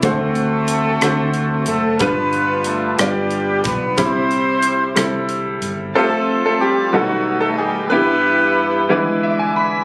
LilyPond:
<<
  \new Staff \with { instrumentName = "Grand piano" } { \time 6/8 \key c \major \tempo 4. = 61 r2. | r2. | r2. | a'8. a'16 g'8 fis'8. a'16 aes'8 |
b'2 r4 | }
  \new Staff \with { instrumentName = "Horn section" } { \time 6/8 \key c \major << { <a a'>2~ <a a'>8 <a a'>8 | <b b'>4 <a a'>8 <g g'>4 <b b'>8 | <c' c''>2 r4 | <a a'>8. <a a'>16 <g g'>8 <fis fis'>8. <a a'>16 <g g'>8 |
<b b'>2 r4 | } \\ { <c' fis'>2~ <c' fis'>8 r8 | <d' f'>4. <b d'>4. | <e' g'>2 r4 | <c' f'>4. <a dis'>4. |
<e' g'>2 r4 | } >> }
  \new Staff \with { instrumentName = "Grand piano" } { \time 6/8 \key c \major << { r2. | r2. | r2. | r2. |
r2 e''16 gis''16 b''8 | } \\ { <d a c' d' fis' c''>4. <a c' d' fis' c''>4. | <g, g b d' f' b'>4. <g b d' f' d''>4. | <c g c' e' b''>4. <g c' e' a'>4. | <c' f' g' a'>4. <b, g b des' dis' fis' a'>4. |
<g, b e' g'>4. <e g gis b d' e' b'>4. | } >> }
  \new Staff \with { instrumentName = "Tonewheel organ" } { \time 6/8 \key c \major r2. | r2. | r2. | r2. |
r2 d''8 b''8 | }
  \new Staff \with { instrumentName = "Tonewheel organ" } { \time 6/8 \key c \major r2. | r2. | r2. | <f a c' a'>4. <dis a b dis' fis'>4. |
<g, e g b g'>4. <d f gis b e'>4. | }
  \new Staff \with { instrumentName = "Fingered electric bass" } { \clef bass \time 6/8 \key c \major d,4. d,4 fis,,8 | g,,4. g,,4 b,,8 | c,4. c,4 g,,8 | r2. |
r2. | }
  \new DrumStaff \with { instrumentName = "Drums" } \drummode { \time 6/8 <hh bd>8 hh8 hh8 <hh ss>8 hh8 hh8 | <hh bd>8 hh8 hh8 <hh ss>8 hh8 <hh bd>8 | <hh bd>8 hh8 hh8 <hh ss>8 hh8 hh8 | r4. r4. |
r4. r4. | }
>>